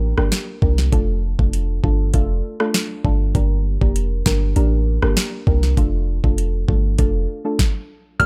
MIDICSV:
0, 0, Header, 1, 5, 480
1, 0, Start_track
1, 0, Key_signature, -1, "minor"
1, 0, Tempo, 606061
1, 733, Time_signature, 4, 2, 24, 8
1, 6540, End_track
2, 0, Start_track
2, 0, Title_t, "Synth bell"
2, 0, Program_c, 0, 98
2, 6491, Note_on_c, 0, 89, 112
2, 6540, Note_off_c, 0, 89, 0
2, 6540, End_track
3, 0, Start_track
3, 0, Title_t, "Synth stab"
3, 0, Program_c, 1, 62
3, 0, Note_on_c, 1, 58, 94
3, 0, Note_on_c, 1, 62, 86
3, 0, Note_on_c, 1, 67, 89
3, 0, Note_on_c, 1, 70, 103
3, 109, Note_off_c, 1, 58, 0
3, 109, Note_off_c, 1, 62, 0
3, 110, Note_off_c, 1, 67, 0
3, 111, Note_off_c, 1, 70, 0
3, 138, Note_on_c, 1, 58, 76
3, 139, Note_on_c, 1, 62, 68
3, 141, Note_on_c, 1, 67, 70
3, 143, Note_on_c, 1, 70, 83
3, 465, Note_off_c, 1, 58, 0
3, 465, Note_off_c, 1, 62, 0
3, 466, Note_off_c, 1, 67, 0
3, 467, Note_off_c, 1, 70, 0
3, 491, Note_on_c, 1, 58, 77
3, 492, Note_on_c, 1, 62, 70
3, 493, Note_on_c, 1, 67, 71
3, 495, Note_on_c, 1, 70, 91
3, 713, Note_off_c, 1, 58, 0
3, 714, Note_off_c, 1, 62, 0
3, 715, Note_off_c, 1, 67, 0
3, 716, Note_off_c, 1, 70, 0
3, 729, Note_on_c, 1, 57, 90
3, 731, Note_on_c, 1, 62, 83
3, 732, Note_on_c, 1, 65, 83
3, 734, Note_on_c, 1, 69, 99
3, 1067, Note_off_c, 1, 57, 0
3, 1068, Note_off_c, 1, 62, 0
3, 1069, Note_off_c, 1, 65, 0
3, 1070, Note_off_c, 1, 69, 0
3, 1097, Note_on_c, 1, 57, 77
3, 1098, Note_on_c, 1, 62, 68
3, 1100, Note_on_c, 1, 65, 68
3, 1101, Note_on_c, 1, 69, 86
3, 1424, Note_off_c, 1, 57, 0
3, 1424, Note_off_c, 1, 62, 0
3, 1425, Note_off_c, 1, 65, 0
3, 1426, Note_off_c, 1, 69, 0
3, 1450, Note_on_c, 1, 57, 81
3, 1451, Note_on_c, 1, 62, 75
3, 1453, Note_on_c, 1, 65, 75
3, 1454, Note_on_c, 1, 69, 91
3, 1673, Note_off_c, 1, 57, 0
3, 1674, Note_off_c, 1, 62, 0
3, 1675, Note_off_c, 1, 65, 0
3, 1675, Note_off_c, 1, 69, 0
3, 1690, Note_on_c, 1, 57, 95
3, 1691, Note_on_c, 1, 62, 91
3, 1693, Note_on_c, 1, 65, 91
3, 1694, Note_on_c, 1, 69, 110
3, 2028, Note_off_c, 1, 57, 0
3, 2028, Note_off_c, 1, 62, 0
3, 2029, Note_off_c, 1, 65, 0
3, 2030, Note_off_c, 1, 69, 0
3, 2058, Note_on_c, 1, 57, 78
3, 2059, Note_on_c, 1, 62, 71
3, 2060, Note_on_c, 1, 65, 72
3, 2062, Note_on_c, 1, 69, 82
3, 2384, Note_off_c, 1, 57, 0
3, 2385, Note_off_c, 1, 62, 0
3, 2386, Note_off_c, 1, 65, 0
3, 2386, Note_off_c, 1, 69, 0
3, 2409, Note_on_c, 1, 57, 78
3, 2410, Note_on_c, 1, 62, 72
3, 2412, Note_on_c, 1, 65, 73
3, 2414, Note_on_c, 1, 69, 85
3, 2633, Note_off_c, 1, 57, 0
3, 2633, Note_off_c, 1, 62, 0
3, 2634, Note_off_c, 1, 65, 0
3, 2635, Note_off_c, 1, 69, 0
3, 2649, Note_on_c, 1, 58, 88
3, 2651, Note_on_c, 1, 62, 82
3, 2653, Note_on_c, 1, 67, 84
3, 2654, Note_on_c, 1, 70, 102
3, 2988, Note_off_c, 1, 58, 0
3, 2988, Note_off_c, 1, 62, 0
3, 2989, Note_off_c, 1, 67, 0
3, 2990, Note_off_c, 1, 70, 0
3, 3017, Note_on_c, 1, 58, 78
3, 3019, Note_on_c, 1, 62, 72
3, 3020, Note_on_c, 1, 67, 71
3, 3022, Note_on_c, 1, 70, 88
3, 3344, Note_off_c, 1, 58, 0
3, 3345, Note_off_c, 1, 62, 0
3, 3346, Note_off_c, 1, 67, 0
3, 3346, Note_off_c, 1, 70, 0
3, 3369, Note_on_c, 1, 58, 84
3, 3371, Note_on_c, 1, 62, 74
3, 3373, Note_on_c, 1, 67, 74
3, 3374, Note_on_c, 1, 70, 91
3, 3593, Note_off_c, 1, 58, 0
3, 3594, Note_off_c, 1, 62, 0
3, 3594, Note_off_c, 1, 67, 0
3, 3595, Note_off_c, 1, 70, 0
3, 3608, Note_on_c, 1, 58, 98
3, 3610, Note_on_c, 1, 62, 88
3, 3612, Note_on_c, 1, 67, 90
3, 3614, Note_on_c, 1, 70, 105
3, 3947, Note_off_c, 1, 58, 0
3, 3948, Note_off_c, 1, 62, 0
3, 3949, Note_off_c, 1, 67, 0
3, 3950, Note_off_c, 1, 70, 0
3, 3978, Note_on_c, 1, 58, 77
3, 3980, Note_on_c, 1, 62, 72
3, 3980, Note_on_c, 1, 67, 71
3, 3982, Note_on_c, 1, 70, 84
3, 4304, Note_off_c, 1, 58, 0
3, 4305, Note_off_c, 1, 62, 0
3, 4306, Note_off_c, 1, 67, 0
3, 4307, Note_off_c, 1, 70, 0
3, 4331, Note_on_c, 1, 58, 78
3, 4333, Note_on_c, 1, 62, 75
3, 4335, Note_on_c, 1, 67, 74
3, 4336, Note_on_c, 1, 70, 88
3, 4554, Note_off_c, 1, 58, 0
3, 4554, Note_off_c, 1, 62, 0
3, 4555, Note_off_c, 1, 67, 0
3, 4556, Note_off_c, 1, 70, 0
3, 4570, Note_on_c, 1, 57, 91
3, 4571, Note_on_c, 1, 62, 82
3, 4573, Note_on_c, 1, 65, 84
3, 4575, Note_on_c, 1, 69, 96
3, 4908, Note_off_c, 1, 57, 0
3, 4908, Note_off_c, 1, 62, 0
3, 4909, Note_off_c, 1, 65, 0
3, 4910, Note_off_c, 1, 69, 0
3, 4938, Note_on_c, 1, 57, 80
3, 4939, Note_on_c, 1, 62, 74
3, 4941, Note_on_c, 1, 65, 71
3, 4942, Note_on_c, 1, 69, 88
3, 5265, Note_off_c, 1, 57, 0
3, 5265, Note_off_c, 1, 62, 0
3, 5266, Note_off_c, 1, 65, 0
3, 5267, Note_off_c, 1, 69, 0
3, 5290, Note_on_c, 1, 57, 80
3, 5290, Note_on_c, 1, 62, 76
3, 5293, Note_on_c, 1, 65, 75
3, 5294, Note_on_c, 1, 69, 90
3, 5513, Note_off_c, 1, 57, 0
3, 5513, Note_off_c, 1, 62, 0
3, 5514, Note_off_c, 1, 65, 0
3, 5515, Note_off_c, 1, 69, 0
3, 5529, Note_on_c, 1, 57, 97
3, 5531, Note_on_c, 1, 62, 91
3, 5532, Note_on_c, 1, 65, 92
3, 5534, Note_on_c, 1, 69, 108
3, 5868, Note_off_c, 1, 57, 0
3, 5868, Note_off_c, 1, 62, 0
3, 5869, Note_off_c, 1, 65, 0
3, 5870, Note_off_c, 1, 69, 0
3, 5897, Note_on_c, 1, 57, 78
3, 5898, Note_on_c, 1, 62, 72
3, 5900, Note_on_c, 1, 65, 70
3, 5901, Note_on_c, 1, 69, 87
3, 6011, Note_off_c, 1, 57, 0
3, 6012, Note_off_c, 1, 62, 0
3, 6012, Note_off_c, 1, 65, 0
3, 6013, Note_off_c, 1, 69, 0
3, 6489, Note_on_c, 1, 58, 89
3, 6491, Note_on_c, 1, 62, 87
3, 6492, Note_on_c, 1, 67, 86
3, 6493, Note_on_c, 1, 70, 102
3, 6540, Note_off_c, 1, 58, 0
3, 6540, Note_off_c, 1, 62, 0
3, 6540, Note_off_c, 1, 67, 0
3, 6540, Note_off_c, 1, 70, 0
3, 6540, End_track
4, 0, Start_track
4, 0, Title_t, "808-style bass"
4, 0, Program_c, 2, 38
4, 0, Note_on_c, 2, 33, 105
4, 108, Note_off_c, 2, 33, 0
4, 140, Note_on_c, 2, 31, 86
4, 242, Note_off_c, 2, 31, 0
4, 492, Note_on_c, 2, 36, 98
4, 711, Note_off_c, 2, 36, 0
4, 733, Note_on_c, 2, 29, 110
4, 1068, Note_off_c, 2, 29, 0
4, 1101, Note_on_c, 2, 29, 96
4, 1422, Note_off_c, 2, 29, 0
4, 1454, Note_on_c, 2, 31, 98
4, 1672, Note_off_c, 2, 31, 0
4, 1694, Note_on_c, 2, 29, 104
4, 1912, Note_off_c, 2, 29, 0
4, 2412, Note_on_c, 2, 31, 94
4, 2631, Note_off_c, 2, 31, 0
4, 2652, Note_on_c, 2, 31, 103
4, 2988, Note_off_c, 2, 31, 0
4, 3021, Note_on_c, 2, 29, 96
4, 3342, Note_off_c, 2, 29, 0
4, 3374, Note_on_c, 2, 31, 93
4, 3592, Note_off_c, 2, 31, 0
4, 3613, Note_on_c, 2, 33, 111
4, 3948, Note_off_c, 2, 33, 0
4, 3980, Note_on_c, 2, 31, 86
4, 4082, Note_off_c, 2, 31, 0
4, 4332, Note_on_c, 2, 36, 98
4, 4551, Note_off_c, 2, 36, 0
4, 4572, Note_on_c, 2, 29, 112
4, 4908, Note_off_c, 2, 29, 0
4, 4941, Note_on_c, 2, 29, 97
4, 5262, Note_off_c, 2, 29, 0
4, 5294, Note_on_c, 2, 31, 100
4, 5512, Note_off_c, 2, 31, 0
4, 5534, Note_on_c, 2, 29, 112
4, 5752, Note_off_c, 2, 29, 0
4, 6492, Note_on_c, 2, 31, 109
4, 6540, Note_off_c, 2, 31, 0
4, 6540, End_track
5, 0, Start_track
5, 0, Title_t, "Drums"
5, 139, Note_on_c, 9, 37, 89
5, 218, Note_off_c, 9, 37, 0
5, 252, Note_on_c, 9, 38, 119
5, 331, Note_off_c, 9, 38, 0
5, 492, Note_on_c, 9, 36, 88
5, 571, Note_off_c, 9, 36, 0
5, 619, Note_on_c, 9, 38, 61
5, 699, Note_off_c, 9, 38, 0
5, 733, Note_on_c, 9, 36, 109
5, 733, Note_on_c, 9, 42, 77
5, 812, Note_off_c, 9, 36, 0
5, 812, Note_off_c, 9, 42, 0
5, 1102, Note_on_c, 9, 36, 93
5, 1181, Note_off_c, 9, 36, 0
5, 1215, Note_on_c, 9, 42, 84
5, 1294, Note_off_c, 9, 42, 0
5, 1455, Note_on_c, 9, 36, 97
5, 1534, Note_off_c, 9, 36, 0
5, 1692, Note_on_c, 9, 42, 80
5, 1694, Note_on_c, 9, 36, 98
5, 1771, Note_off_c, 9, 42, 0
5, 1774, Note_off_c, 9, 36, 0
5, 2060, Note_on_c, 9, 37, 88
5, 2139, Note_off_c, 9, 37, 0
5, 2172, Note_on_c, 9, 38, 115
5, 2174, Note_on_c, 9, 42, 76
5, 2252, Note_off_c, 9, 38, 0
5, 2253, Note_off_c, 9, 42, 0
5, 2412, Note_on_c, 9, 36, 90
5, 2491, Note_off_c, 9, 36, 0
5, 2652, Note_on_c, 9, 36, 110
5, 2652, Note_on_c, 9, 42, 74
5, 2731, Note_off_c, 9, 36, 0
5, 2732, Note_off_c, 9, 42, 0
5, 3021, Note_on_c, 9, 36, 93
5, 3100, Note_off_c, 9, 36, 0
5, 3134, Note_on_c, 9, 42, 81
5, 3214, Note_off_c, 9, 42, 0
5, 3373, Note_on_c, 9, 38, 111
5, 3374, Note_on_c, 9, 36, 105
5, 3452, Note_off_c, 9, 38, 0
5, 3453, Note_off_c, 9, 36, 0
5, 3612, Note_on_c, 9, 42, 83
5, 3691, Note_off_c, 9, 42, 0
5, 3979, Note_on_c, 9, 37, 92
5, 4059, Note_off_c, 9, 37, 0
5, 4093, Note_on_c, 9, 38, 120
5, 4094, Note_on_c, 9, 42, 78
5, 4172, Note_off_c, 9, 38, 0
5, 4173, Note_off_c, 9, 42, 0
5, 4332, Note_on_c, 9, 36, 90
5, 4411, Note_off_c, 9, 36, 0
5, 4459, Note_on_c, 9, 38, 61
5, 4539, Note_off_c, 9, 38, 0
5, 4572, Note_on_c, 9, 36, 106
5, 4573, Note_on_c, 9, 42, 76
5, 4651, Note_off_c, 9, 36, 0
5, 4652, Note_off_c, 9, 42, 0
5, 4941, Note_on_c, 9, 36, 95
5, 5020, Note_off_c, 9, 36, 0
5, 5054, Note_on_c, 9, 42, 83
5, 5134, Note_off_c, 9, 42, 0
5, 5294, Note_on_c, 9, 36, 106
5, 5374, Note_off_c, 9, 36, 0
5, 5532, Note_on_c, 9, 42, 85
5, 5534, Note_on_c, 9, 36, 98
5, 5611, Note_off_c, 9, 42, 0
5, 5614, Note_off_c, 9, 36, 0
5, 6012, Note_on_c, 9, 36, 110
5, 6013, Note_on_c, 9, 38, 92
5, 6092, Note_off_c, 9, 36, 0
5, 6092, Note_off_c, 9, 38, 0
5, 6493, Note_on_c, 9, 36, 116
5, 6494, Note_on_c, 9, 42, 79
5, 6540, Note_off_c, 9, 36, 0
5, 6540, Note_off_c, 9, 42, 0
5, 6540, End_track
0, 0, End_of_file